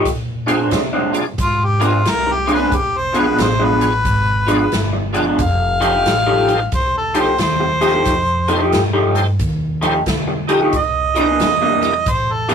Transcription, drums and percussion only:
0.05 kick, closed hi-hat
0.48 closed hi-hat
0.71 snare, closed hi-hat
1.14 closed hi-hat
1.38 kick, closed hi-hat
1.81 closed hi-hat
2.05 snare, closed hi-hat
2.48 closed hi-hat
2.72 kick, closed hi-hat
3.14 closed hi-hat
3.38 snare, closed hi-hat
3.81 closed hi-hat
4.05 kick, closed hi-hat
4.48 closed hi-hat
4.72 snare, closed hi-hat
5.14 closed hi-hat
5.39 kick, closed hi-hat
5.82 closed hi-hat
6.06 snare, closed hi-hat
6.48 closed hi-hat
6.72 kick, closed hi-hat
7.15 closed hi-hat
7.38 snare, closed hi-hat
7.81 closed hi-hat
8.05 kick, closed hi-hat
8.48 closed hi-hat
8.72 snare, closed hi-hat
9.15 closed hi-hat
9.39 kick, closed hi-hat
9.82 closed hi-hat
10.06 kick, snare, closed hi-hat
10.49 closed hi-hat
10.73 kick, closed hi-hat
11.16 closed hi-hat
11.40 snare, closed hi-hat
11.82 closed hi-hat
12.06 kick, closed hi-hat
12.49 closed hi-hat

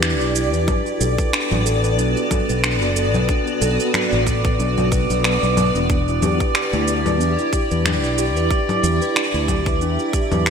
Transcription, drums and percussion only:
0.03 finger snap, shaker
0.21 shaker
0.35 shaker
0.54 shaker
0.68 kick, low conga, shaker
0.86 shaker
1.01 shaker
1.18 kick, shaker
1.33 finger snap, shaker
1.51 low conga, shaker
1.66 shaker
1.84 shaker
1.99 shaker
2.17 shaker
2.31 kick, low conga, shaker
2.49 shaker
2.64 finger snap, shaker
2.82 shaker
2.96 shaker
3.14 low conga, shaker
3.29 kick, shaker
3.47 shaker
3.62 shaker
3.80 shaker
3.94 finger snap, low conga, shaker
4.12 shaker
4.27 kick, shaker
4.45 kick, shaker
4.60 shaker
4.78 low conga, shaker
4.92 kick, shaker
5.10 shaker
5.24 finger snap, shaker
5.43 shaker
5.57 low conga, shaker
5.75 shaker
5.90 kick, shaker
6.08 shaker
6.22 low conga, shaker
6.40 kick, shaker
6.55 finger snap, shaker
6.73 shaker
6.88 shaker
7.06 low conga, shaker
7.21 shaker
7.39 shaker
7.53 kick, shaker
7.71 shaker
7.86 finger snap, low conga, shaker
8.04 shaker
8.18 shaker
8.37 shaker
8.51 kick, shaker
8.69 low conga, shaker
8.84 shaker
9.02 shaker
9.16 finger snap, shaker
9.34 shaker
9.48 kick, low conga, shaker
9.66 kick, shaker
9.81 shaker
9.99 shaker
10.13 kick, shaker
10.32 low conga, shaker
10.46 finger snap, shaker

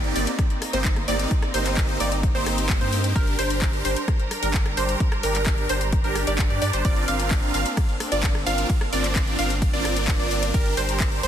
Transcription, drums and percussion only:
0.04 closed hi-hat
0.16 open hi-hat
0.27 closed hi-hat
0.39 kick, cross-stick, closed hi-hat
0.50 closed hi-hat
0.62 cross-stick, open hi-hat
0.73 closed hi-hat
0.85 kick, clap, closed hi-hat
0.96 cross-stick, closed hi-hat
1.08 open hi-hat
1.19 closed hi-hat
1.31 kick, closed hi-hat
1.42 cross-stick, closed hi-hat
1.54 open hi-hat
1.66 clap, closed hi-hat
1.77 kick, clap, closed hi-hat
1.89 closed hi-hat
2.00 open hi-hat
2.12 closed hi-hat
2.23 kick, closed hi-hat
2.35 closed hi-hat
2.46 cross-stick, open hi-hat
2.58 closed hi-hat
2.69 kick, clap, closed hi-hat
2.81 closed hi-hat
2.93 open hi-hat
3.04 closed hi-hat
3.16 kick, closed hi-hat
3.27 closed hi-hat
3.39 open hi-hat
3.50 closed hi-hat
3.62 kick, clap, closed hi-hat
3.73 closed hi-hat
3.85 open hi-hat
3.96 closed hi-hat
4.08 kick, cross-stick, closed hi-hat
4.20 closed hi-hat
4.31 cross-stick, open hi-hat
4.43 closed hi-hat
4.54 kick, clap, closed hi-hat
4.66 cross-stick, closed hi-hat
4.77 open hi-hat
4.89 closed hi-hat
5.00 kick, closed hi-hat
5.12 cross-stick, closed hi-hat
5.23 open hi-hat
5.35 clap, closed hi-hat
5.46 kick, clap, closed hi-hat
5.58 closed hi-hat
5.69 open hi-hat
5.81 closed hi-hat
5.92 kick, closed hi-hat
6.04 closed hi-hat
6.16 cross-stick, open hi-hat
6.27 closed hi-hat
6.39 kick, clap, closed hi-hat
6.50 closed hi-hat
6.62 open hi-hat
6.73 closed hi-hat
6.85 kick, closed hi-hat, ride
6.96 closed hi-hat
7.08 open hi-hat
7.20 closed hi-hat
7.31 kick, clap, closed hi-hat, ride
7.43 closed hi-hat
7.54 open hi-hat
7.66 closed hi-hat
7.77 kick, cross-stick, closed hi-hat, ride
7.89 closed hi-hat
8.00 cross-stick, open hi-hat
8.12 closed hi-hat
8.23 kick, clap, closed hi-hat, ride
8.35 cross-stick, closed hi-hat
8.47 open hi-hat
8.58 closed hi-hat
8.70 kick, closed hi-hat, ride
8.81 cross-stick, closed hi-hat
8.93 open hi-hat
9.04 clap, closed hi-hat
9.16 kick, clap, closed hi-hat, ride
9.27 closed hi-hat
9.39 open hi-hat
9.50 closed hi-hat
9.62 kick, closed hi-hat, ride
9.73 closed hi-hat
9.85 cross-stick, open hi-hat
9.96 closed hi-hat
10.08 kick, clap, closed hi-hat, ride
10.20 closed hi-hat
10.31 open hi-hat
10.43 closed hi-hat
10.54 kick, closed hi-hat, ride
10.66 closed hi-hat
10.77 open hi-hat
10.89 closed hi-hat
11.00 kick, clap, closed hi-hat, ride
11.12 closed hi-hat
11.23 open hi-hat

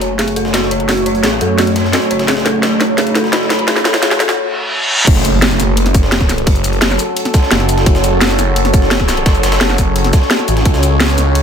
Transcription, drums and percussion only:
0.01 closed hi-hat
0.19 snare, closed hi-hat
0.28 closed hi-hat
0.36 closed hi-hat
0.45 snare
0.54 snare, closed hi-hat
0.62 snare
0.71 closed hi-hat
0.80 closed hi-hat
0.89 snare, closed hi-hat, open hi-hat
0.97 closed hi-hat
1.06 closed hi-hat
1.15 closed hi-hat
1.24 snare, closed hi-hat
1.41 closed hi-hat
1.58 snare, closed hi-hat
1.67 closed hi-hat
1.76 snare, closed hi-hat
1.84 snare
1.93 snare, closed hi-hat
2.02 closed hi-hat
2.11 closed hi-hat
2.19 snare, closed hi-hat
2.28 snare, closed hi-hat
2.37 snare
2.45 snare, closed hi-hat
2.63 snare, closed hi-hat
2.80 snare, closed hi-hat
2.98 snare, closed hi-hat
3.07 closed hi-hat
3.15 snare, closed hi-hat
3.24 snare
3.33 snare, closed hi-hat
3.41 snare
3.50 snare, closed hi-hat
3.59 closed hi-hat
3.68 snare, closed hi-hat
3.76 snare, closed hi-hat
3.85 snare, closed hi-hat
3.94 snare, closed hi-hat
4.03 snare, closed hi-hat
4.11 snare
4.20 snare, closed hi-hat
4.29 snare
5.07 kick, closed hi-hat, crash
5.16 snare, shaker
5.25 closed hi-hat, shaker
5.42 snare, closed hi-hat
5.51 shaker
5.59 snare, closed hi-hat, shaker
5.77 closed hi-hat
5.86 snare, closed hi-hat
5.94 kick, closed hi-hat, shaker
6.03 snare
6.12 snare, closed hi-hat
6.21 kick, snare
6.29 snare, closed hi-hat, shaker
6.38 closed hi-hat
6.47 kick, closed hi-hat, open hi-hat
6.55 closed hi-hat, shaker
6.64 closed hi-hat, shaker
6.73 closed hi-hat
6.82 snare, closed hi-hat
6.91 snare, shaker
6.99 closed hi-hat, shaker
7.16 closed hi-hat
7.25 snare, closed hi-hat
7.34 kick, snare, closed hi-hat, shaker
7.43 snare
7.51 snare, closed hi-hat
7.60 snare, closed hi-hat
7.69 closed hi-hat, shaker
7.78 snare, closed hi-hat
7.86 kick, closed hi-hat
7.95 snare, shaker
8.04 closed hi-hat, shaker
8.21 snare, closed hi-hat
8.30 shaker
8.39 snare, closed hi-hat, shaker
8.56 closed hi-hat
8.65 snare, closed hi-hat
8.74 kick, closed hi-hat, shaker
8.82 snare
8.91 snare, closed hi-hat
9.00 kick, snare
9.08 snare, closed hi-hat, shaker
9.17 closed hi-hat
9.26 kick, snare, closed hi-hat
9.35 closed hi-hat, shaker
9.43 snare, closed hi-hat, shaker
9.52 snare, closed hi-hat
9.61 snare, closed hi-hat
9.70 snare, shaker
9.78 kick, snare, closed hi-hat, shaker
9.96 closed hi-hat
10.04 snare, closed hi-hat
10.13 kick, snare, closed hi-hat, shaker
10.22 snare
10.30 snare, closed hi-hat
10.39 snare
10.48 closed hi-hat, shaker
10.57 snare, closed hi-hat
10.65 kick, closed hi-hat
10.74 snare, shaker
10.83 closed hi-hat, shaker
11.00 snare, closed hi-hat
11.09 shaker
11.18 snare, closed hi-hat, shaker
11.35 closed hi-hat

